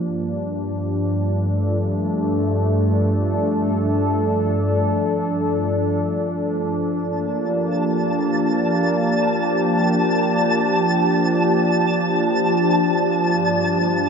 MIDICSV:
0, 0, Header, 1, 3, 480
1, 0, Start_track
1, 0, Key_signature, -2, "minor"
1, 0, Tempo, 500000
1, 13528, End_track
2, 0, Start_track
2, 0, Title_t, "Synth texture"
2, 0, Program_c, 0, 99
2, 6463, Note_on_c, 0, 81, 77
2, 13528, Note_off_c, 0, 81, 0
2, 13528, End_track
3, 0, Start_track
3, 0, Title_t, "Analog synth pad"
3, 0, Program_c, 1, 89
3, 0, Note_on_c, 1, 62, 67
3, 0, Note_on_c, 1, 67, 76
3, 40, Note_on_c, 1, 43, 77
3, 471, Note_on_c, 1, 53, 87
3, 1246, Note_on_c, 1, 57, 69
3, 1263, Note_on_c, 1, 69, 83
3, 1986, Note_off_c, 1, 67, 0
3, 6434, Note_off_c, 1, 43, 0
3, 6437, Note_off_c, 1, 57, 0
3, 6764, Note_on_c, 1, 58, 84
3, 7046, Note_on_c, 1, 67, 67
3, 8165, Note_off_c, 1, 69, 0
3, 12788, Note_on_c, 1, 43, 73
3, 12797, Note_off_c, 1, 58, 0
3, 13528, Note_off_c, 1, 43, 0
3, 13528, Note_off_c, 1, 53, 0
3, 13528, Note_off_c, 1, 62, 0
3, 13528, Note_off_c, 1, 67, 0
3, 13528, End_track
0, 0, End_of_file